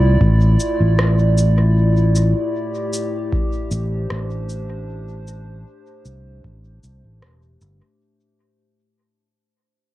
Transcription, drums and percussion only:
0.21 kick loud
0.60 cabasa medium
0.99 cross-stick medium
1.38 cabasa soft
2.16 cabasa medium
2.93 cabasa medium
3.33 kick loud
3.71 cabasa medium
4.10 cross-stick medium
4.50 cabasa soft
5.28 cabasa medium
6.05 cabasa medium
6.44 kick loud
6.83 cabasa medium
7.22 cross-stick medium
7.61 cabasa medium

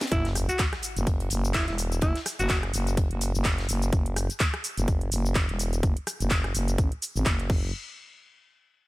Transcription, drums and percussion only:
0.01 snare medium
0.01 closed hi-hat medium
0.01 closed hi-hat soft
0.01 cabasa soft
0.06 snare medium
0.06 closed hi-hat medium
0.12 kick loud
0.12 closed hi-hat medium
0.12 cabasa soft
0.25 snare soft
0.25 closed hi-hat medium
0.35 cross-stick medium
0.35 closed hi-hat medium
0.35 open hi-hat loud
0.35 cabasa medium
0.49 closed hi-hat soft
0.49 cabasa soft
0.59 kick loud
0.59 snare loud
0.59 clap loud
0.59 closed hi-hat medium
0.59 cabasa soft
0.73 cross-stick medium
0.73 snare soft
0.73 closed hi-hat soft
0.82 closed hi-hat medium
0.82 open hi-hat medium
0.82 cabasa medium
0.96 closed hi-hat medium
0.96 cabasa soft
1.07 kick loud
1.07 closed hi-hat medium
1.07 cabasa soft
1.20 closed hi-hat soft
1.30 closed hi-hat medium
1.30 open hi-hat loud
1.30 cabasa medium
1.45 cabasa soft
1.54 kick loud
1.54 snare loud
1.54 clap loud
1.54 closed hi-hat medium
1.54 cabasa soft
1.67 snare soft
1.67 closed hi-hat soft
1.78 closed hi-hat medium
1.78 open hi-hat medium
1.78 cabasa medium
1.92 closed hi-hat soft
1.92 cabasa soft
2.01 kick loud
2.01 closed hi-hat medium
2.01 cabasa soft
2.15 snare medium
2.15 closed hi-hat medium
2.26 cross-stick medium
2.26 snare soft
2.26 closed hi-hat medium
2.26 open hi-hat loud
2.26 cabasa medium
2.39 closed hi-hat soft
2.39 cabasa soft
2.49 kick loud
2.49 snare loud
2.49 clap loud
2.49 closed hi-hat medium
2.49 cabasa soft
2.63 cross-stick medium
2.63 closed hi-hat soft
2.74 closed hi-hat medium
2.74 open hi-hat medium
2.74 cabasa medium
2.87 closed hi-hat medium
2.87 closed hi-hat soft
2.87 cabasa soft
2.97 kick loud
2.97 closed hi-hat medium
2.97 cabasa soft
3.11 closed hi-hat soft
3.21 closed hi-hat medium
3.21 open hi-hat loud
3.21 cabasa medium
3.35 cabasa soft
3.44 kick loud
3.44 snare loud
3.44 clap loud
3.44 closed hi-hat medium
3.44 cabasa soft
3.58 snare medium
3.58 closed hi-hat soft
3.69 closed hi-hat medium
3.69 open hi-hat loud
3.69 cabasa medium
3.82 closed hi-hat soft
3.82 cabasa soft
3.93 kick loud
3.93 closed hi-hat medium
3.93 cabasa soft
4.06 closed hi-hat soft
4.16 cross-stick medium
4.16 open hi-hat loud
4.16 cabasa medium
4.30 closed hi-hat soft
4.30 cabasa soft
4.40 kick loud
4.40 clap loud
4.40 closed hi-hat medium
4.40 cabasa soft
4.54 cross-stick medium
4.54 closed hi-hat soft
4.64 open hi-hat loud
4.64 cabasa medium
4.77 closed hi-hat medium
4.77 cabasa soft
4.88 kick loud
4.88 closed hi-hat medium
4.88 cabasa soft
5.01 closed hi-hat soft
5.12 open hi-hat loud
5.12 cabasa medium
5.26 cabasa soft
5.35 kick loud
5.35 clap loud
5.35 closed hi-hat medium
5.35 cabasa soft
5.49 closed hi-hat soft
5.59 open hi-hat medium
5.59 cabasa medium
5.73 closed hi-hat soft
5.73 cabasa soft
5.83 kick loud
5.83 closed hi-hat medium
5.83 cabasa soft
5.97 closed hi-hat soft
6.07 cross-stick medium
6.07 open hi-hat loud
6.07 cabasa medium
6.20 closed hi-hat soft
6.20 cabasa soft
6.30 kick loud
6.30 clap loud
6.30 closed hi-hat medium
6.30 cabasa soft
6.44 cross-stick medium
6.44 closed hi-hat soft
6.55 open hi-hat loud
6.55 cabasa medium
6.68 closed hi-hat medium
6.68 cabasa soft
6.78 kick loud
6.78 closed hi-hat medium
6.78 cabasa soft
6.92 closed hi-hat soft
7.02 open hi-hat loud
7.02 cabasa medium
7.16 cabasa soft
7.26 kick loud
7.26 clap loud
7.26 closed hi-hat medium
7.26 cabasa soft
7.39 closed hi-hat soft
7.50 kick loud
7.50 crash medium

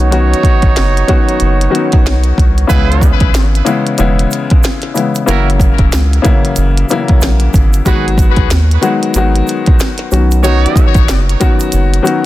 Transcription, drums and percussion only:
0.00 closed hi-hat medium
0.12 closed hi-hat loud
0.34 closed hi-hat medium
0.43 kick medium
0.43 closed hi-hat medium
0.62 kick medium
0.62 closed hi-hat medium
0.76 snare loud
0.76 snare medium
0.76 closed hi-hat medium
0.97 closed hi-hat medium
1.08 kick medium
1.08 closed hi-hat medium
1.29 closed hi-hat medium
1.40 closed hi-hat medium
1.61 closed hi-hat medium
1.75 closed hi-hat medium
1.92 kick medium
1.92 snare soft
1.92 closed hi-hat soft
2.06 snare loud
2.06 snare medium
2.06 closed hi-hat medium
2.24 closed hi-hat medium
2.38 kick medium
2.38 closed hi-hat medium
2.58 closed hi-hat medium
2.70 kick loud
2.70 closed hi-hat loud
2.70 shaker medium
2.92 closed hi-hat medium
3.01 kick medium
3.01 closed hi-hat medium
3.01 shaker soft
3.20 kick medium
3.20 closed hi-hat medium
3.34 snare loud
3.34 closed hi-hat medium
3.34 shaker medium
3.55 closed hi-hat medium
3.66 closed hi-hat medium
3.66 shaker soft
3.87 closed hi-hat medium
3.98 closed hi-hat medium
3.98 shaker medium
4.19 closed hi-hat medium
4.31 closed hi-hat medium
4.31 shaker medium
4.50 kick medium
4.50 closed hi-hat soft
4.63 snare loud
4.63 snare medium
4.63 closed hi-hat loud
4.63 shaker medium
4.82 snare soft
4.82 closed hi-hat medium
4.95 closed hi-hat medium
4.95 shaker medium
5.15 closed hi-hat medium
5.15 shaker medium
5.28 closed hi-hat loud
5.28 shaker medium
5.50 closed hi-hat medium
5.60 kick medium
5.60 closed hi-hat medium
5.60 shaker soft
5.78 kick medium
5.78 closed hi-hat medium
5.92 snare loud
5.92 closed hi-hat medium
5.92 shaker medium
6.13 closed hi-hat medium
6.25 kick loud
6.25 closed hi-hat medium
6.25 shaker soft
6.45 closed hi-hat medium
6.56 closed hi-hat loud
6.56 shaker medium
6.78 closed hi-hat medium
6.89 closed hi-hat medium
6.89 shaker medium
7.08 kick medium
7.08 closed hi-hat medium
7.21 snare loud
7.21 snare medium
7.21 closed hi-hat loud
7.21 shaker medium
7.40 closed hi-hat medium
7.54 kick medium
7.54 closed hi-hat medium
7.54 shaker medium
7.73 closed hi-hat medium
7.73 shaker medium
7.86 kick loud
7.86 closed hi-hat loud
7.86 shaker medium
8.08 closed hi-hat medium
8.18 kick medium
8.18 closed hi-hat medium
8.18 shaker soft
8.37 kick loud
8.37 closed hi-hat medium
8.50 snare loud
8.50 closed hi-hat medium
8.50 shaker medium
8.71 closed hi-hat medium
8.83 closed hi-hat medium
8.83 shaker soft
9.03 closed hi-hat medium
9.14 closed hi-hat medium
9.14 shaker medium
9.36 closed hi-hat medium
9.47 closed hi-hat medium
9.47 shaker medium
9.66 kick medium
9.66 closed hi-hat soft
9.79 snare loud
9.79 snare medium
9.79 closed hi-hat medium
9.79 shaker medium
9.98 snare soft
9.98 closed hi-hat medium
10.12 closed hi-hat medium
10.12 shaker medium
10.31 closed hi-hat medium
10.31 shaker medium
10.44 closed hi-hat loud
10.44 shaker medium
10.66 closed hi-hat medium
10.76 kick medium
10.76 closed hi-hat medium
10.76 shaker soft
10.95 kick medium
10.95 closed hi-hat medium
10.95 shaker medium
11.09 snare loud
11.09 closed hi-hat medium
11.09 shaker medium
11.29 closed hi-hat medium
11.41 kick loud
11.41 closed hi-hat medium
11.41 shaker soft
11.60 closed hi-hat medium
11.60 shaker medium
11.72 closed hi-hat loud
11.72 shaker medium
11.94 closed hi-hat medium
12.05 closed hi-hat medium
12.05 shaker soft

